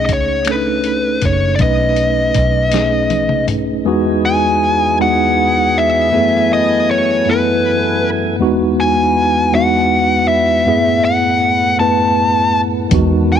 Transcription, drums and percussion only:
0.09 kick medium
0.09 closed hi-hat medium
0.45 finger snap medium
0.45 closed hi-hat medium
0.84 closed hi-hat medium
1.22 kick medium
1.22 closed hi-hat medium
1.59 kick loud
1.59 closed hi-hat medium
1.96 closed hi-hat medium
2.34 kick medium
2.34 closed hi-hat medium
2.71 snare medium
2.71 closed hi-hat medium
3.10 closed hi-hat soft
3.10 high tom medium
3.29 mid tom medium
3.48 closed hi-hat medium
3.48 mid tom medium
12.91 kick loud
12.91 closed hi-hat medium

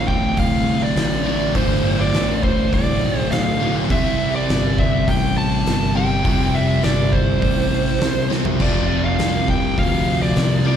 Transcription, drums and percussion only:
0.08 kick loud
0.37 kick loud
0.37 open hi-hat medium
0.96 snare loud
0.96 open hi-hat medium
1.12 snare soft
1.55 kick loud
1.55 open hi-hat medium
2.14 snare loud
2.14 open hi-hat medium
2.43 kick loud
2.73 kick loud
2.73 open hi-hat medium
3.32 snare loud
3.32 open hi-hat medium
3.90 kick loud
3.90 open hi-hat medium
4.49 snare loud
4.49 open hi-hat medium
4.78 kick medium
5.08 kick loud
5.08 open hi-hat medium
5.66 snare loud
5.66 open hi-hat medium
5.82 snare soft
6.25 kick loud
6.25 open hi-hat medium
6.83 snare loud
6.83 open hi-hat medium
7.13 kick medium
7.42 kick loud
7.42 open hi-hat medium
8.01 snare loud
8.01 open hi-hat medium
8.31 snare medium
8.45 floor tom loud
8.60 kick loud
8.60 crash loud
8.60 splash medium
9.19 snare loud
9.19 open hi-hat medium
9.48 kick medium
9.78 kick loud
9.78 open hi-hat medium
10.36 snare loud
10.36 open hi-hat medium

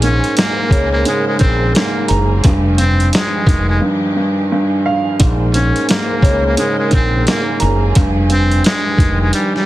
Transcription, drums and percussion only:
0.02 closed hi-hat medium
0.24 closed hi-hat medium
0.37 snare loud
0.37 closed hi-hat loud
0.71 kick loud
0.71 closed hi-hat medium
1.05 closed hi-hat loud
1.39 kick loud
1.39 closed hi-hat medium
1.75 snare loud
1.75 closed hi-hat medium
2.08 closed hi-hat medium
2.44 kick loud
2.44 closed hi-hat medium
2.78 closed hi-hat medium
3.00 closed hi-hat medium
3.13 snare loud
3.13 closed hi-hat loud
3.47 kick medium
3.47 closed hi-hat medium
5.20 kick loud
5.20 closed hi-hat medium
5.54 closed hi-hat medium
5.76 closed hi-hat medium
5.89 snare loud
5.89 closed hi-hat loud
6.22 kick medium
6.22 closed hi-hat medium
6.57 closed hi-hat loud
6.91 kick loud
6.91 closed hi-hat medium
7.27 snare loud
7.27 closed hi-hat medium
7.60 closed hi-hat medium
7.95 kick loud
7.95 closed hi-hat medium
8.30 closed hi-hat medium
8.51 closed hi-hat medium
8.64 snare loud
8.64 closed hi-hat loud
8.98 kick loud
8.98 closed hi-hat medium
9.33 closed hi-hat loud
9.56 snare soft

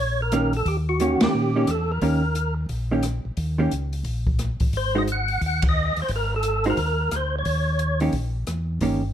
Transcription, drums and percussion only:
0.32 cross-stick medium
0.32 closed hi-hat medium
0.53 open hi-hat soft
0.66 kick soft
0.66 open hi-hat soft
1.00 closed hi-hat medium
1.21 snare medium
1.21 ride medium
1.67 cross-stick medium
1.67 closed hi-hat medium
2.01 kick soft
2.01 open hi-hat soft
2.35 closed hi-hat soft
2.69 kick soft
2.69 open hi-hat soft
3.03 cross-stick medium
3.03 closed hi-hat medium
3.37 kick soft
3.37 open hi-hat soft
3.71 closed hi-hat medium
3.93 open hi-hat soft
4.04 kick soft
4.04 open hi-hat soft
4.27 kick medium
4.39 cross-stick medium
4.39 closed hi-hat medium
4.60 kick medium
4.60 open hi-hat soft
4.73 kick soft
4.73 open hi-hat soft
5.07 closed hi-hat soft
5.28 open hi-hat soft
5.42 kick soft
5.42 open hi-hat soft
5.62 kick medium
5.62 ride medium
5.96 open hi-hat soft
6.08 kick soft
6.08 open hi-hat soft
6.43 closed hi-hat medium
6.64 open hi-hat soft
6.77 kick soft
6.77 open hi-hat soft
7.11 cross-stick medium
7.11 closed hi-hat medium
7.45 kick soft
7.45 open hi-hat soft
7.79 closed hi-hat soft
8.00 open hi-hat soft
8.13 kick soft
8.13 open hi-hat soft
8.47 cross-stick medium
8.47 closed hi-hat medium
8.81 kick soft
8.81 open hi-hat soft

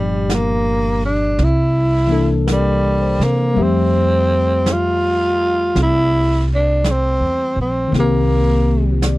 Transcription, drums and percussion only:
0.30 brush sweep soft
0.30 snare soft
0.30 hi-hat pedal medium
1.39 brush sweep soft
1.39 snare soft
2.47 brush sweep soft
2.47 snare soft
2.47 hi-hat pedal soft
3.21 snare soft
3.57 brush sweep soft
4.66 brush sweep soft
4.66 snare soft
4.66 hi-hat pedal medium
5.76 brush sweep soft
5.76 snare soft
6.84 brush sweep soft
6.84 snare soft
6.84 hi-hat pedal soft
7.94 brush sweep soft
7.94 snare soft
9.02 brush sweep soft
9.02 snare soft
9.02 hi-hat pedal medium

